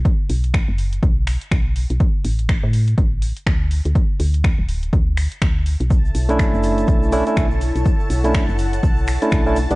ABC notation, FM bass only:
X:1
M:4/4
L:1/16
Q:"Swing 16ths" 1/4=123
K:Bm
V:1 name="FM bass" clef=bass
z2 B,,,3 F,,,3 B,,,3 z B,,,3 B,,, | z2 A,,,3 A,,3 A,,,3 z D,,3 D,, | z2 D,,3 D,,,3 D,,3 z D,,3 B,,,- | B,,,2 B,,,3 F,,,3 B,,,3 z B,,,3 B,,, |
z2 B,,,3 F,,,3 B,,,3 z B,,,3 B,,, |]